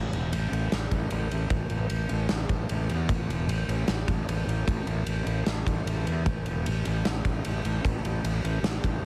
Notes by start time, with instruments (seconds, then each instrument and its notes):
Already playing: fingered electric bass A1
0.13 fingered electric bass E1, ride
0.32 fingered electric bass A1, ride
0.51 fingered electric bass A1, ride
0.72 fingered electric bass A1, snare, ride
0.91 fingered electric bass A1, kick, ride
1.10 fingered electric bass A1, ride
1.31 fingered electric bass A1, ride
1.50 fingered electric bass A1, kick, ride
1.70 fingered electric bass A1, ride
1.90 fingered electric bass A1, ride
2.09 fingered electric bass A1, ride
2.29 fingered electric bass A1, snare, ride
2.49 fingered electric bass A1, kick, ride
2.69 fingered electric bass A1, ride
2.89 fingered electric bass E2, ride
3.09 fingered electric bass A1, kick, ride
3.28 fingered electric bass E1, ride
3.47 fingered electric bass A1, ride
3.68 fingered electric bass A1, ride
3.88 fingered electric bass A1, snare, ride
4.08 fingered electric bass A1, kick, ride
4.28 fingered electric bass A1, ride
4.47 fingered electric bass A1, ride
4.67 fingered electric bass A1, kick, ride
4.86 fingered electric bass A1, ride
5.07 fingered electric bass A1, ride
5.26 fingered electric bass A1, ride
5.46 fingered electric bass A1, snare, ride
5.66 fingered electric bass A1, kick, ride
5.86 fingered electric bass A1, ride
6.07 fingered electric bass E2, ride
6.25 fingered electric bass A1, kick, ride
6.46 fingered electric bass E1, ride
6.66 fingered electric bass A1, ride
6.85 fingered electric bass A1, ride
7.05 fingered electric bass A1, snare, ride
7.25 fingered electric bass A1, kick, ride
7.45 fingered electric bass A1, ride
7.65 fingered electric bass A1, ride
7.84 fingered electric bass A1, kick, ride
8.05 fingered electric bass A1, ride
8.24 fingered electric bass A1, ride
8.44 fingered electric bass A1, ride
8.63 fingered electric bass A1, snare, ride
8.84 fingered electric bass A1, kick, ride
9.02 fingered electric bass A1